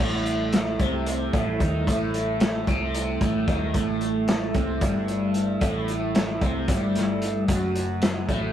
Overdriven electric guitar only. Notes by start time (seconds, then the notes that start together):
0.00 A2 A3
0.80 C3 C4
1.33 A2 A3
1.60 D#3 D#4
1.88 A2 A3
2.68 C3 C4
3.22 A2 A3
3.48 D#3 D#4
3.75 A2 A3
4.55 C3 C4
4.82 G2 G3
5.61 A2 A3
6.42 C3 C4
6.68 G2 G3
7.49 F#2 F#3
8.30 A2 A3